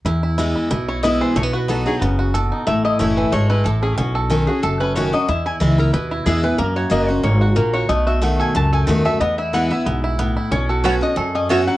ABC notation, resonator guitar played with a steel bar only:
X:1
M:4/4
L:1/8
Q:"Swing" 1/4=184
K:E
V:1 name="Resonator guitar played with a steel bar"
z4 z c d =c | c B A G F3 z | e d c B c B A G | F3 G A B c d |
e g z ^A B E G B | ^A c d =c ^c F A c | d e f g a g f e | d e f e2 z3 |
c F B d c d e f |]